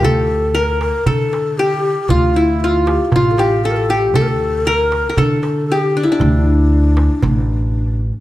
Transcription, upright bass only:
\new Staff \with { instrumentName = "Upright bass" } { \clef bass \time 4/4 \key d \minor \tempo 4 = 117 d,2 d2 | d,2 a,,2 | d,2 d2 | d,2 a,,2 | }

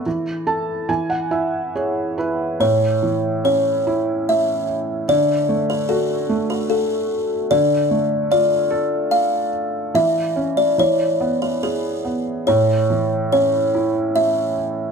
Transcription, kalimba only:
\new Staff \with { instrumentName = "Kalimba" } { \time 3/4 \key a \major \tempo 4 = 73 b'2 r4 | cis''4 cis''4 e''4 | d''8. b'16 a'8. b'16 a'8. r16 | d''4 d''4 f''4 |
e''8. d''16 cis''8. b'16 b'8. r16 | cis''4 cis''4 e''4 | }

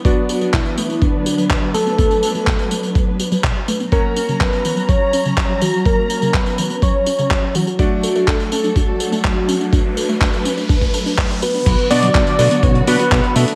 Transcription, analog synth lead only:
\new Staff \with { instrumentName = "Analog synth lead" } { \time 4/4 \key b \minor \tempo 4 = 124 fis'4 e'4 d'4. a'8~ | a'2~ a'8 r4. | ais'4 b'4 cis''4. fis'8 | ais'4 b'4 cis''4. fis'8 |
fis'4 a'8 a'8 fis'2~ | fis'2. r8 b'8~ | b'8 d''4. cis''8 b'4 a'8 | }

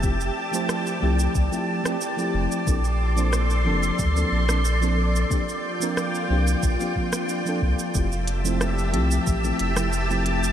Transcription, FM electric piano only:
\new Staff \with { instrumentName = "FM electric piano" } { \time 4/4 \key f \major \tempo 4 = 91 <f a c' e' g'>16 r8 <f a c' e' c''>8. <f a c' e' g'>8. <f a c' e' g'>8 <f a c' e' g'>16 r16 <f a c' e' g'>8. | <f bes c' d' a'>16 r8 <f bes c' d' c''>8. <f bes c' d' a'>8. <f bes c' d' a'>8 <f bes c' d' a'>16 r16 <f bes c' d' a'>8. | <f bes c' d' g'>16 r8 <f bes c' d' bes'>8. <f bes c' d' g'>8. <f bes c' d' g'>16 <f bes c' d' f'>8. <f bes c' d' a'>8. | <f a c' e' g'>16 r8 <f a c' e' c''>8. <f a c' e' g'>8. <f a c' e' g'>8 <f a c' e' g'>16 r16 <f a c' e' g'>8. | }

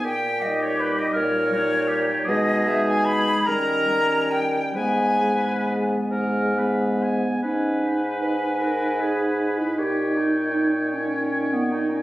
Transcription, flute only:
\new Staff \with { instrumentName = "Flute" } { \time 6/8 \key gis \minor \tempo 4. = 51 g''8 dis''16 cis''16 b'16 dis''16 cis''4. | dis''8 e''16 gis''16 b''8 ais''4 g''8 | gis''4. r4. | gis''2. |
g''2. | }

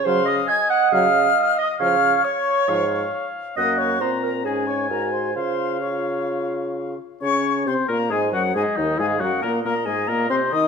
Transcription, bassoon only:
\new Staff \with { instrumentName = "Bassoon" } { \clef bass \time 4/4 \key des \major \tempo 4 = 136 des4 r4 des4 r4 | des4 r4 aes,4 r4 | ges,4 bes,4 aes,4 aes,4 | des2.~ des8 r8 |
des4 c8 bes,8 aes,8 ges,8 aes,8 ees,8 | aes,8 ges,8 bes,8 bes,8 aes,8 bes,8 c8 ees8 | }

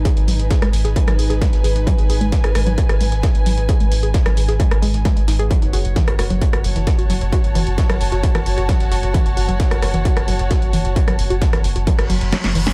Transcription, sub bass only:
\new Staff \with { instrumentName = "Sub bass" } { \clef bass \time 4/4 \key fis \dorian \tempo 4 = 132 r16 gis,,16 gis,,16 gis,,16 r16 gis,,16 gis,,16 gis,,16 r16 gis,,16 gis,,16 gis,,16 r16 gis,,16 gis,,16 gis,,16 | r16 gis,,16 gis,,16 gis,,16 r16 gis,,16 gis,,16 gis,,16 r16 gis,,16 gis,,16 gis,,16 r16 gis,,16 gis,,16 gis,,16 | r16 gis,,16 gis,,16 gis,,16 r16 gis,,16 gis,,16 gis,,16 r16 gis,,16 gis,,16 gis,,16 r16 gis,,16 gis,,16 gis,,16 | r16 fis,,16 fis,,16 fis,,16 r16 fis,,16 fis,,16 fis,,16 r16 fis,,16 fis,,16 fis,,16 r16 fis,,16 fis,,16 fis,,16 |
r16 fis,,16 fis,,16 fis,,16 r16 fis,,16 fis,,16 fis,,16 r16 fis,,16 fis,,16 fis,,16 r16 fis,,16 fis,,16 fis,,16 | r16 fis,,16 fis,,16 fis,,16 r16 fis,,16 fis,,16 fis,,16 r16 fis,,16 fis,,16 fis,,16 r16 fis,,16 fis,,16 fis,,16 | r16 fis,,16 fis,,16 fis,,16 r16 fis,,16 fis,,16 fis,,16 r16 fis,,16 fis,,16 fis,,16 r16 fis,,16 fis,,16 fis,,16 | }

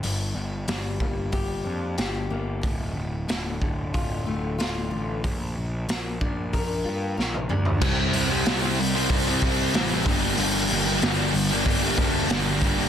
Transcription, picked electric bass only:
\new Staff \with { instrumentName = "Picked electric bass" } { \clef bass \time 4/4 \key g \dorian \tempo 4 = 93 g,,8 g,,8 g,,8 g,,8 g,,8 f,8 g,,8 g,,8 | d,,8 d,,8 d,,8 d,,8 d,,8 d,,8 d,,8 a,,8 | bes,,8 bes,,8 bes,,8 bes,,8 bes,,8 g,8 bes,,8 d,8 | c,8 c,8 c,4 c,4 a,,8 g,,8 |
g,,8 g,,8 g,,8 g,,8 g,,8 d,8 g,,8 g,,8 | }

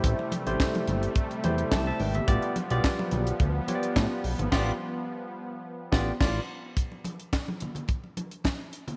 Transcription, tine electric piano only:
\new Staff \with { instrumentName = "Tine electric piano" } { \time 4/4 \key g \mixolydian \tempo 4 = 107 << { r2. <g' e'' a''>16 <c'' e'' a''>16 <b' g''>16 <g' e''>16~ | <g' e''>16 r2. r8. | r1 | r1 | } \\ { <a e' g' c''>8 r16 <a e' g' c''>4~ <a e' g' c''>16 r8 <a e' g' c''>4 r8 | <b f' g' d''>8 r16 <b f' g' d''>4~ <b f' g' d''>16 r8 <b f' g' cis'' d''>4 r8 | <b f' g' d''>8 r2 <b f' g' d''>8 <f' d''>8 r8 | r1 | } >> }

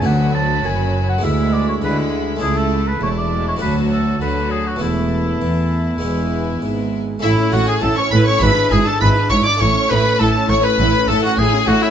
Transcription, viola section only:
\new Staff \with { instrumentName = "Viola section" } { \time 4/4 \key a \major \tempo 4 = 101 fis2 gis4 gis4 | a4 a8 gis8 fis4 fis4 | b2 b4.~ b16 r16 | e'16 cis'16 e'16 cis'16 e'16 cis'16 e'16 cis'16 e'16 d'16 e'16 d'16 e'16 d'16 e'16 d'16 |
e'16 cis'16 e'16 cis'16 e'16 cis'16 e'16 cis'16 e'16 cis'16 e'16 cis'16 e'16 cis'16 e'16 cis'16 | }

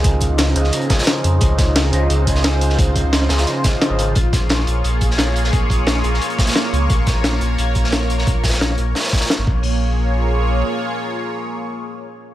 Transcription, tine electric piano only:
\new Staff \with { instrumentName = "Tine electric piano" } { \time 4/4 \key bes \minor \tempo 4 = 175 <des des' f' c'' ees''>4. <des des' f' c'' ees''>4 <des des' f' c'' aes''>4. | <des des' f' c'' ees''>4. <des des' f' c'' ees''>4 <des des' f' c'' aes''>4. | <des des' f' c'' ees''>4. <des des' f' c'' ees''>4 r8. <des des' f' c'' ees''>8. | r1 |
r1 | r1 | r1 | r1 |
r1 | }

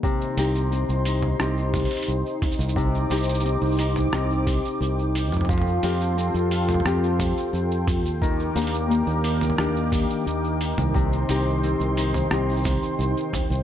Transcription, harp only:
\new Staff \with { instrumentName = "Harp" } { \time 4/4 \key c \dorian \tempo 4 = 88 c8 <c' ees' g'>8 c'8 ees'8 <c' ees' g'>2 | c8 <c' ees' g'>8 c'8 ees'8 <c' ees' g'>2 | f8 <c' f' g'>8 c'8 f'8 <c' f' g'>2 | ees8 <bes d' g'>8 bes8 d'8 <bes d' g'>2 |
c8 <c' ees' g'>8 c'8 ees'8 <c' ees' g'>2 | }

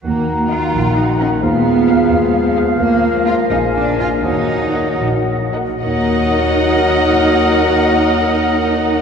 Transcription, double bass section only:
\new Staff \with { instrumentName = "Double bass section" } { \clef bass \time 6/8 \key ees \minor \tempo 4. = 79 ees,4. bes,,4. | ees,4. ees,4. | d,4. bes,,4. | ees,4. bes,,4. |
ees,2.~ | ees,2. | }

